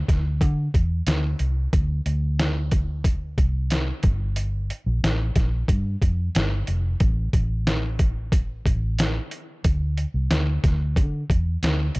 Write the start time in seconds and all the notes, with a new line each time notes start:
0.08 D2, kick, snare, closed hi-hat
0.41 D3, kick, closed hi-hat
0.74 E2, kick, closed hi-hat
1.07 D2, snare, closed hi-hat
1.39 C2, closed hi-hat
1.73 D2, kick, closed hi-hat
2.06 D2, closed hi-hat
2.39 snare, closed hi-hat
2.71 kick, closed hi-hat
3.04 kick, closed hi-hat
3.38 C2, kick, closed hi-hat
3.70 snare, closed hi-hat
4.03 G1, kick, closed hi-hat
4.36 closed hi-hat
4.70 closed hi-hat
4.86 A#1
5.03 A1, snare, closed hi-hat
5.36 A#1, kick, snare, closed hi-hat
5.68 G2, kick, closed hi-hat
6.02 F2, kick, closed hi-hat
6.35 G1, snare, closed hi-hat
6.67 F1, closed hi-hat
7.00 A1, kick, closed hi-hat
7.33 A1, kick, closed hi-hat
7.67 snare, closed hi-hat
7.99 kick, closed hi-hat
8.32 kick, closed hi-hat
8.66 A1, kick, closed hi-hat
8.99 snare, closed hi-hat
9.31 closed hi-hat
9.64 D2, kick, closed hi-hat
9.97 closed hi-hat
10.14 C2
10.31 D2, snare, closed hi-hat
10.64 D2, kick, snare, closed hi-hat
10.96 D3, kick, closed hi-hat
11.30 E2, kick, closed hi-hat
11.63 D2, snare, closed hi-hat
11.95 C2, closed hi-hat